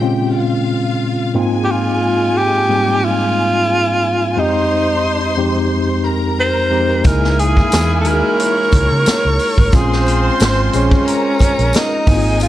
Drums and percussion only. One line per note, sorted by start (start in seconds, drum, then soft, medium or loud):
7.04 kick loud
7.04 closed hi-hat medium
7.04 tambourine medium
7.24 snare soft
7.39 closed hi-hat medium
7.57 kick medium
7.72 snare loud
7.72 closed hi-hat medium
7.72 tambourine medium
8.05 closed hi-hat medium
8.05 tambourine soft
8.40 closed hi-hat medium
8.40 tambourine soft
8.72 kick medium
8.72 closed hi-hat medium
8.72 tambourine soft
9.06 snare loud
9.06 closed hi-hat loud
9.06 tambourine medium
9.39 open hi-hat medium
9.39 tambourine soft
9.58 kick medium
9.72 kick loud
9.72 closed hi-hat medium
9.72 tambourine medium
9.93 snare soft
10.06 closed hi-hat medium
10.06 tambourine soft
10.40 snare loud
10.40 closed hi-hat medium
10.40 tambourine medium
10.73 closed hi-hat medium
10.73 tambourine soft
10.91 kick loud
11.08 closed hi-hat medium
11.08 tambourine soft
11.39 kick medium
11.39 closed hi-hat medium
11.39 tambourine soft
11.59 closed hi-hat soft
11.73 snare loud
11.73 closed hi-hat loud
11.73 tambourine medium
12.07 kick loud
12.07 open hi-hat medium
12.07 tambourine soft
12.40 closed hi-hat medium
12.40 tambourine medium